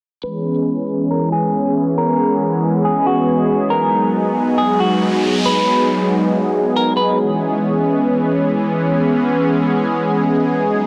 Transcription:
0.24 analog synth pad E3 G#3 B3 C#4 G#4, clean electric guitar B4
1.11 clean electric guitar A#4
1.32 clean electric guitar G#4
1.98 clean electric guitar A#4
2.85 clean electric guitar G#4
3.07 clean electric guitar F#4
3.70 analog synth pad F#3 D#4, clean electric guitar A#4, noise sweep
4.58 clean electric guitar G#4
4.80 clean electric guitar F#4
5.46 clean electric guitar B4
6.76 clean electric guitar A#4
6.97 clean electric guitar B4
7.19 analog synth pad E3 G#3 B3 C#4 G#4
10.67 analog synth pad F#3 B3 D#4

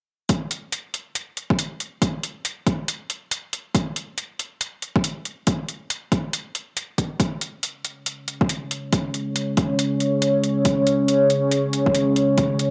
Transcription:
0.29 kick, closed hi-hat
0.51 closed hi-hat
0.72 closed hi-hat
0.94 closed hi-hat
1.15 closed hi-hat
1.37 closed hi-hat
1.50 kick
1.59 closed hi-hat
1.80 closed hi-hat
2.02 kick, closed hi-hat
2.23 closed hi-hat
2.45 closed hi-hat
2.67 kick, closed hi-hat
2.88 closed hi-hat
3.10 closed hi-hat
3.31 closed hi-hat
3.53 closed hi-hat
3.75 kick, closed hi-hat
3.96 closed hi-hat
4.18 closed hi-hat
4.39 closed hi-hat
4.61 closed hi-hat
4.82 closed hi-hat
4.96 kick
5.04 closed hi-hat
5.25 closed hi-hat
5.47 kick, closed hi-hat
5.69 closed hi-hat
5.90 closed hi-hat
6.12 kick, closed hi-hat
6.33 closed hi-hat
6.55 closed hi-hat
6.77 closed hi-hat
6.98 kick, closed hi-hat
7.20 ambient pad C#4 G#4 C#5, kick, closed hi-hat
7.41 closed hi-hat
7.63 closed hi-hat
7.85 closed hi-hat
8.06 closed hi-hat
8.28 closed hi-hat
8.41 kick
8.49 closed hi-hat
8.71 closed hi-hat
8.93 kick, closed hi-hat
9.14 closed hi-hat
9.36 closed hi-hat
9.57 kick, closed hi-hat
9.79 closed hi-hat
10.00 closed hi-hat
10.22 closed hi-hat
10.44 closed hi-hat
10.65 kick, closed hi-hat
10.87 closed hi-hat
11.08 closed hi-hat
11.30 closed hi-hat
11.51 closed hi-hat
11.73 closed hi-hat
11.86 kick
11.95 closed hi-hat
12.16 closed hi-hat
12.38 kick, closed hi-hat
12.59 closed hi-hat

